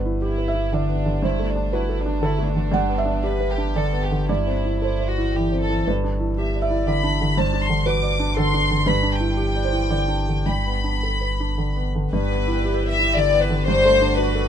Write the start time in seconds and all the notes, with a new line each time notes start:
Already playing: G1 G2 B3 B4
0.05 E4
0.22 E4 G4
0.38 B4
0.48 E5
0.55 E4
0.72 D3 D4 D5
0.89 B3
1.06 D3
1.22 G2 E4 C5
1.39 A3
1.49 D4
1.55 D4
1.73 E4 F#4 B4
1.89 A4
1.99 D4
2.06 D4
2.22 D3 E4 A4
2.39 A3
2.47 D4
2.56 D3
2.72 G2 F#5
2.89 B3
2.98 E5
3.05 D4
3.24 G4 B4
3.40 B4
3.50 G4
3.58 D4
3.76 D3 A4 D5
3.93 B3
4.02 G4
4.11 D3
4.29 G2 E4 D5
4.47 C4
4.65 E4
4.81 E4 A4 C5
5.00 C5
5.07 F#4
5.18 E4
5.34 E3 G4
5.52 C4
5.61 A4
5.70 E3
5.87 G1 G2 B4
6.04 D4
6.20 E4
6.37 G4 E5
6.55 D5
6.62 D5 E5
6.70 E4
6.87 D3 D5 B5
7.04 D4
7.21 D3
7.37 G2 C5 A5
7.53 D4
7.63 C6
7.70 D3
7.86 F#4 B4 D6
8.02 D5
8.20 D4
8.37 D3 A4 C6
8.54 D4
8.71 D3
8.86 G2 B4 B5
9.03 D4
9.13 G5
9.20 E4
9.37 G4
9.55 D5
9.64 C5
9.72 E4
9.90 D3 D5
10.08 D4
10.29 D3
10.46 G2 G5 B5
10.66 B3
10.84 D4
11.03 A4
11.21 B4
11.40 D4
11.58 D3
11.77 B3
11.95 D3
12.11 G1 G2 E4 G4 B4 D5
12.31 B3
12.48 E4
12.65 G4
12.83 B4
12.90 E5
12.99 E4
13.15 D3 D5
13.34 B3
13.40 B4
13.50 D3
13.66 G2 D4 F#4 C5
13.85 A3
14.02 D4
14.17 F#4 B4
14.35 A4